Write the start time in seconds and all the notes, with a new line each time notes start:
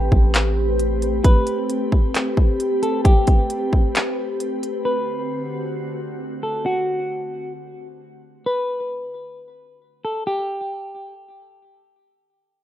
Already playing: A3 C4 G4 B4
0.12 A1, kick
0.34 clap, closed hi-hat
0.79 closed hi-hat
1.02 closed hi-hat
1.24 B4, kick, closed hi-hat
1.47 closed hi-hat
1.70 closed hi-hat
1.92 kick
2.15 clap, closed hi-hat
2.37 kick
2.60 closed hi-hat
2.83 A4, closed hi-hat
3.05 G4, kick, closed hi-hat
3.27 kick, closed hi-hat
3.50 closed hi-hat
3.73 kick
3.95 clap, closed hi-hat
4.40 closed hi-hat
4.63 closed hi-hat
4.85 D3 C4 F#4 B4
6.43 A4
6.66 F#4
8.46 B4
10.05 A4
10.27 G4